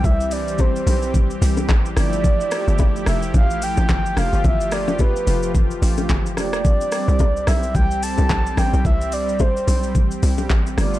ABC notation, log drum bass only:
X:1
M:4/4
L:1/16
Q:"Swing 16ths" 1/4=109
K:C
V:1 name="Log drum bass" clef=bass
C,,6 B,,,4 C,,2 A,,,2 G,,,2 | z3 G,,,3 F,,,2 A,,,3 A,,, G,,,2 F,,, G,,, | G,,,6 F,,,4 A,,,2 G,,,2 F,,,2 | z3 C,,3 B,,,2 C,,3 C,, B,,,2 A,,, B,,, |
C,,6 B,,,4 C,,2 A,,,2 G,,,2 |]